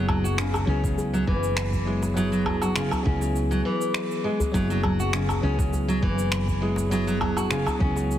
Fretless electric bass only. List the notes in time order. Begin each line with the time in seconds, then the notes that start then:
Already playing: F#1
0.67 C#2
1.27 F#1
3.06 C#2
4.54 F#1
5.43 C#2
6.03 F#1
7.81 C#2